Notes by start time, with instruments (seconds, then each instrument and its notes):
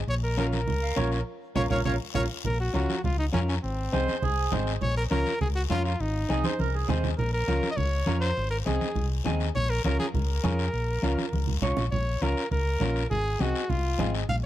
0.07 fingered electric bass A#1, trumpet C#5, long guiro
0.23 trumpet A#4
0.37 clean electric guitar C#4 F4 A#4, trumpet A#4, high conga, short guiro
0.53 trumpet A#4, high conga, short guiro
0.67 fingered electric bass C#2, low conga, long guiro
0.83 accordion F5
0.96 fingered electric bass A#1, clean electric guitar C#4 F4 A#4, accordion C#5, high conga, low conga, short guiro
1.12 accordion C#5, short guiro
1.56 fingered electric bass A#1, clean electric guitar C#4 F4 A#4, accordion A#4 C#5 F5, trumpet C#5, low conga, long guiro
1.70 fingered electric bass A#1, clean electric guitar C#4 F4 A#4, accordion A#4 C#5 F5, trumpet C#5, low conga, long guiro
1.85 fingered electric bass A#1, clean electric guitar C#4 F4 A#4, accordion A#4 C#5 F5, trumpet C#5, low conga, long guiro
2.14 fingered electric bass A#1, clean electric guitar C#4 F4 A#4, accordion A#4 C#5 F5, trumpet C#5, low conga, long guiro
2.44 fingered electric bass A#1, trumpet A#4, low conga, long guiro
2.60 trumpet F#4
2.74 fingered electric bass C#2, clean electric guitar C#4 F4 A#4, trumpet F#4, high conga, short guiro
2.89 high conga, short guiro
3.04 fingered electric bass C#2, trumpet F4, low conga, long guiro
3.19 trumpet D#4
3.33 fingered electric bass F2, clean electric guitar C#4 F4 A#4, trumpet C#4, high conga, low conga, short guiro
3.49 trumpet C#4, short guiro
3.63 fingered electric bass G#1, trumpet C4, long guiro
3.93 fingered electric bass C2, clean electric guitar C4 D#4 G#4, accordion C5, high conga, short guiro
4.08 high conga, short guiro
4.22 fingered electric bass C2, accordion G#4, low conga, long guiro
4.52 fingered electric bass G#1, clean electric guitar C4 D#4 G#4, accordion C5, high conga, low conga, short guiro
4.67 short guiro
4.81 fingered electric bass A#1, trumpet C#5, low conga, long guiro
4.97 trumpet A#4
5.11 fingered electric bass C#2, clean electric guitar C#4 F4 A#4, trumpet A#4, high conga, short guiro
5.26 high conga, short guiro
5.41 fingered electric bass C#2, trumpet G#4, low conga, long guiro
5.55 trumpet F#4
5.70 fingered electric bass F2, clean electric guitar C#4 F4 A#4, trumpet F4, high conga, low conga, short guiro
5.85 trumpet F4, short guiro
6.00 fingered electric bass G#1, trumpet D#4, long guiro
6.29 fingered electric bass C2, clean electric guitar C4 D#4 G#4, accordion G#4, high conga, short guiro
6.44 accordion C5, high conga, short guiro
6.59 fingered electric bass C2, accordion A#4, high conga, long guiro
6.75 accordion G#4
6.88 fingered electric bass D#2, clean electric guitar C4 D#4 G#4, accordion C5, low conga, short guiro
7.04 low conga, short guiro
7.18 fingered electric bass A#1, trumpet A#4, low conga, long guiro
7.33 trumpet A#4
7.48 fingered electric bass C#2, clean electric guitar C#4 F4 A#4, high conga, short guiro
7.63 high conga, short guiro
7.71 trumpet D#5
7.77 fingered electric bass C#2, trumpet C#5, low conga, long guiro
8.06 fingered electric bass F2, clean electric guitar C#4 F4 A#4, high conga, short guiro
8.20 trumpet C5, short guiro
8.37 fingered electric bass G#1, long guiro
8.51 trumpet A#4
8.66 fingered electric bass C2, clean electric guitar C4 D#4 G#4, trumpet G#4, high conga, short guiro
8.81 high conga, short guiro
8.95 fingered electric bass C2, low conga, long guiro
9.25 fingered electric bass D#2, clean electric guitar C4 D#4 G#4, high conga, low conga, short guiro
9.40 short guiro
9.55 fingered electric bass A#1, trumpet C#5, low conga, long guiro
9.70 trumpet A#4
9.84 fingered electric bass C#2, clean electric guitar C#4 F4 A#4, trumpet A#4, high conga, short guiro
10.00 trumpet G#4, high conga, short guiro
10.14 fingered electric bass C#2, trumpet A#4, low conga, long guiro
10.44 fingered electric bass F2, clean electric guitar C#4 F4 G#4, high conga, low conga, short guiro
10.59 short guiro
10.73 fingered electric bass A#1, long guiro
11.03 fingered electric bass C#2, clean electric guitar C#4 F4 A#4, high conga, short guiro
11.18 high conga, short guiro
11.33 fingered electric bass C#2, high conga, long guiro
11.47 low conga
11.62 fingered electric bass C2, clean electric guitar C#4 F4 C#5, low conga, short guiro
11.77 fingered electric bass A#1, low conga, short guiro
11.91 fingered electric bass A#1, trumpet C#5, low conga, long guiro
12.21 fingered electric bass C#2, clean electric guitar C#4 F4 A#4, trumpet A#4, high conga, short guiro
12.37 short guiro
12.51 fingered electric bass C#2, trumpet A#4, low conga, long guiro
12.81 fingered electric bass A#1, clean electric guitar C#4 F4 A#4, high conga, low conga, short guiro
12.96 short guiro
13.10 fingered electric bass G#1, trumpet G#4, low conga, long guiro
13.40 fingered electric bass C2, clean electric guitar C4 D#4 G#4, trumpet F#4, high conga, short guiro
13.55 short guiro
13.70 fingered electric bass C2, trumpet F4, low conga, long guiro
13.99 fingered electric bass G#1, clean electric guitar C4 D#4 G#4, high conga, low conga, short guiro
14.15 short guiro
14.29 fingered electric bass A#1, trumpet F5, low conga, long guiro